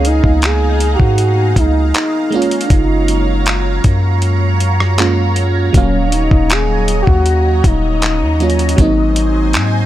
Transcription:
Already playing: C#2 A#3 B3 D#4 G#4 F5 A#5
0.05 D#4, closed hi-hat
0.24 C#2, kick
0.42 G#4, clap, closed hi-hat
0.80 closed hi-hat
0.95 F#4
1.00 G#2, kick
1.18 closed hi-hat
1.56 C#2 D#4, kick, closed hi-hat
1.94 D#4, clap, closed hi-hat
2.31 F#3 G#3 A#3 C#4 C#5, closed hi-hat
2.35 C#4 F4
2.42 closed hi-hat
2.51 closed hi-hat
2.61 D4, closed hi-hat
2.70 F#1 D#4, kick, closed hi-hat
3.08 closed hi-hat
3.46 clap, closed hi-hat
3.84 F#2, kick, closed hi-hat
4.22 closed hi-hat
4.60 closed hi-hat
4.80 cross-stick
4.98 G#3 A#3 C#4 F4, clap, closed hi-hat
5.36 closed hi-hat
5.73 D#1 F#3 A#3 C#4 D#5, kick, closed hi-hat
5.78 F5
6.07 D4
6.12 D#4, closed hi-hat
6.31 D#1, kick
6.50 G#4, clap, closed hi-hat
6.88 closed hi-hat
7.02 F#4
7.07 D#2, kick
7.26 closed hi-hat
7.64 D#1 D#4, kick, closed hi-hat
8.02 clap, closed hi-hat
8.21 D#2
8.40 F#3 A#3 C#4 F4, closed hi-hat
8.50 closed hi-hat
8.59 closed hi-hat
8.69 closed hi-hat
8.76 G#1 F#3 A#3 C4 D#4 C5 G#5, kick, closed hi-hat
8.81 D#4
9.16 closed hi-hat
9.53 G#2, clap, closed hi-hat

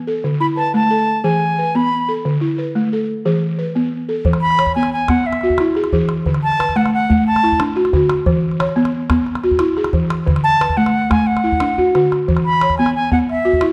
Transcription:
0.07 A4
0.24 D3
0.40 E4 B5
0.57 B4 A5
0.74 A3 A5
0.91 A4
1.24 E3 G#4 G#5
1.59 B4
1.75 B3 B5
2.09 A4
2.25 D3
2.41 E4
2.58 B4
2.75 A3
2.93 A4
3.25 E3 G#4
3.59 B4
3.75 B3
4.09 A4
4.25 E3, calabash thump
4.33 calabash click
4.41 B5
4.50 calabash click
4.59 C#5, calabash click
4.66 calabash thump, calabash click
4.75 B3 G#5, calabash click
4.83 calabash click
4.93 G#5
5.08 B3 F#5, calabash thump, calabash click
5.25 E5, calabash click
5.33 calabash click
5.41 F#4, calabash click
5.50 calabash thump
5.58 E4, calabash click
5.75 G#4, calabash click
5.84 calabash click
5.92 E3 G#4, calabash thump
6.09 calabash click
6.26 D3, calabash thump
6.34 calabash click
6.43 A5
6.52 calabash click
6.59 B4, calabash click
6.69 calabash thump, calabash click
6.76 A3 F#5, calabash click
6.86 calabash click
6.94 F#5
7.10 A3, calabash thump
7.27 A5, calabash click
7.36 calabash click
7.44 E4, calabash click
7.52 calabash thump
7.60 D4, calabash click
7.76 F#4, calabash click
7.85 calabash click
7.93 D3 F#4, calabash thump
8.10 calabash click
8.26 E3, calabash thump
8.52 calabash click
8.60 C#5, calabash click
8.69 calabash click
8.76 B3, calabash click
8.85 calabash click
9.10 B3, calabash thump, calabash click
9.27 calabash click
9.35 calabash click
9.44 F#4, calabash click
9.51 calabash thump
9.59 E4, calabash click
9.77 G#4, calabash click
9.84 calabash click
9.93 E3, calabash thump
10.10 calabash click
10.27 D3, calabash thump
10.36 calabash click
10.44 A5
10.61 B4, calabash click
10.69 calabash thump, calabash click
10.77 A3 F#5
10.86 calabash click
11.10 A3 G#5, calabash thump, calabash click
11.19 calabash click
11.27 F#5
11.37 calabash click
11.44 E4, calabash click
11.52 calabash thump
11.60 D4, calabash click
11.78 F#4, calabash thump
11.95 D3 F#4, calabash click
12.12 calabash click
12.28 E3, calabash thump
12.37 calabash click
12.45 B5
12.53 calabash click
12.61 C#5, calabash click
12.70 calabash thump, calabash click
12.78 B3 G#5, calabash click
12.86 calabash click
12.95 G#5
13.12 B3 F#5, calabash thump
13.29 E5, calabash click
13.45 F#4
13.53 calabash thump
13.61 E4, calabash click

